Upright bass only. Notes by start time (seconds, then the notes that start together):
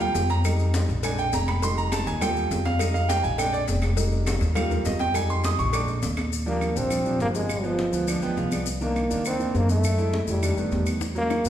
Already playing: D#2
0.15 F2
0.89 A#1
1.33 F1
2.07 D#2
2.51 F2
3.24 A#1
3.68 F1
4.41 D#2
4.86 F2
5.59 A#1
6.03 D#2
6.76 A#1
7.19 G1
7.93 D2
8.22 D2
8.37 C2
9.11 D#2
9.55 F#2
10.28 F2
10.57 F2
10.72 E2
11.45 G#2